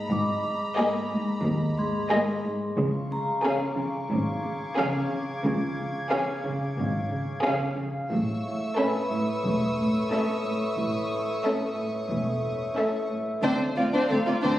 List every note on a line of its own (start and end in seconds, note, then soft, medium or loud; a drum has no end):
0.00 2.78 G#4 soft
0.00 2.78 D#5 soft
0.00 2.40 A#5 soft
0.00 2.40 B5 soft
0.11 0.64 G#1 medium
0.11 0.31 G#2 medium
0.11 0.64 G#2 medium
0.11 2.07 D#5 soft
0.11 2.08 D6 soft
0.45 0.65 G#2 soft
0.78 0.98 G#2 soft
0.78 1.28 A#3 medium
0.78 1.28 G#4 medium
0.78 1.27 D#5 soft
1.11 1.31 G#2 medium
1.44 1.97 D#2 medium
1.44 1.65 G#3 medium
1.77 1.98 G#2 soft
1.77 3.74 G#4 soft
1.77 3.74 C6 soft
2.11 2.31 G#2 medium
2.11 2.61 A#3 medium
2.11 2.61 G#4 medium
2.11 2.61 D#5 medium
2.45 2.65 G#2 medium
2.78 3.31 C#2 medium
2.78 3.31 C#3 medium
2.78 2.98 C#3 medium
2.78 8.12 C#4 soft
2.78 8.08 G#4 soft
2.78 8.11 F5 soft
2.78 7.74 C#6 soft
3.12 3.32 C#3 soft
3.12 5.08 A#5 medium
3.44 3.65 C#3 soft
3.44 3.94 C#4 medium
3.44 3.94 G#4 medium
3.44 3.95 F5 medium
3.44 7.75 D6 soft
3.78 3.98 C#3 medium
4.11 4.64 G#1 medium
4.11 4.64 G#2 medium
4.11 4.31 C#4 medium
4.11 7.76 G#6 medium
4.45 4.65 C#3 medium
4.78 4.98 C#3 medium
4.78 5.28 C#4 medium
4.78 5.27 G#4 medium
4.78 5.28 F5 medium
5.11 5.31 C#3 medium
5.44 5.98 C#2 medium
5.44 5.97 C#3 medium
5.44 5.65 C#3 medium
5.78 5.98 C#3 soft
6.11 6.32 C#3 soft
6.11 6.61 C#4 medium
6.11 6.61 G#4 medium
6.11 6.61 F5 medium
6.45 6.65 C#3 medium
6.78 7.31 G#1 medium
6.78 7.31 G#2 medium
6.78 6.99 C#4 medium
7.12 7.32 C#3 soft
7.45 7.65 C#3 medium
7.45 7.95 C#4 medium
7.45 7.94 G#4 medium
7.45 7.95 F5 medium
7.79 7.98 C#3 soft
8.11 8.65 A1 medium
8.11 8.31 A2 medium
8.11 8.64 A2 medium
8.11 13.45 A4 soft
8.11 13.41 C#5 soft
8.11 13.45 E5 soft
8.11 13.07 C#6 soft
8.11 11.74 E6 soft
8.45 8.65 A2 soft
8.77 8.99 A2 soft
8.77 9.28 C#4 medium
8.77 9.27 A4 medium
8.77 10.74 B4 soft
8.77 9.28 E5 soft
8.77 10.74 B5 soft
8.77 13.08 D#6 soft
9.12 9.32 A2 medium
9.45 9.97 E1 soft
9.45 9.97 E2 soft
9.45 9.65 A3 soft
9.79 9.99 A2 soft
10.11 10.32 A2 soft
10.11 10.61 C#4 soft
10.11 10.61 A4 soft
10.11 10.62 E5 soft
10.45 10.65 A2 soft
10.77 11.30 A1 soft
10.77 11.30 A2 soft
10.77 10.98 A2 soft
11.12 11.32 A2 soft
11.45 11.65 A2 soft
11.45 11.94 C#4 soft
11.45 11.95 A4 soft
11.45 11.94 E5 soft
11.78 11.98 A2 soft
12.10 12.64 E1 soft
12.10 12.63 E2 soft
12.10 12.31 A3 soft
12.44 12.64 A2 soft
12.76 12.97 A2 soft
12.76 13.27 C#4 soft
12.76 13.28 A4 soft
12.76 13.27 E5 soft
12.76 13.39 E6 soft
13.11 13.31 A2 soft
13.43 13.50 D2 soft
13.43 13.64 D3 soft
13.43 13.60 C4 soft
13.43 13.59 D4 soft
13.43 14.59 F4 soft
13.43 13.59 C5 soft
13.43 14.59 C5 soft
13.43 14.59 F5 soft
13.43 impact soft
13.77 13.84 D2 soft
13.77 13.84 C4 soft
13.77 13.98 D4 soft
13.77 13.84 F4 soft
13.77 13.84 D5 soft
13.92 13.99 D2 soft
13.92 14.09 C4 soft
13.92 14.09 D4 soft
13.92 14.09 C5 soft
14.09 14.17 D2 soft
14.09 14.18 D2 soft
14.09 14.31 D3 soft
14.09 14.18 C4 soft
14.09 14.16 A4 soft
14.09 14.17 F5 soft
14.09 14.59 A#5 soft
14.26 14.34 D2 soft
14.26 14.34 C4 soft
14.26 14.33 F4 soft
14.26 14.34 D5 soft
14.42 14.50 D2 soft
14.42 14.59 D3 soft
14.42 14.59 C4 soft
14.42 14.59 D4 soft
14.42 14.59 C5 soft